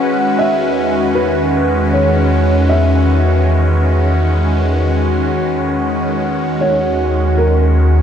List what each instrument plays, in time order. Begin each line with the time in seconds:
Already playing: synth drone E2, ambient pad D#3 G#3 C#4 F#4 B4, glass harmonica F#4 F#5, felt piano F#5
0.39 felt piano E5
1.15 felt piano B4
1.93 felt piano C#5
2.69 felt piano E5
5.86 synth drone D#2
6.61 felt piano C#5
7.34 ambient pad A#4, felt piano A#4